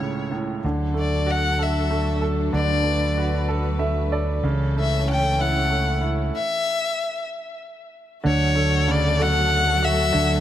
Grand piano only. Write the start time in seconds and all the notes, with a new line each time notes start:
Already playing: C#2 A2 C#4
0.00 C#3
0.32 A2
0.65 D3
0.94 A3
1.26 F#4
1.59 A4
1.91 A3
2.21 A4
2.53 D3
2.84 A3
3.18 F#4
3.48 A4
3.79 A3 E5
4.12 A4 D5
4.44 C#3
4.76 A3
5.08 C#4
5.39 E4
5.70 A3
6.01 E4
8.24 D3
8.55 A3
8.88 C#3
9.19 A3
9.83 F#4
10.13 D3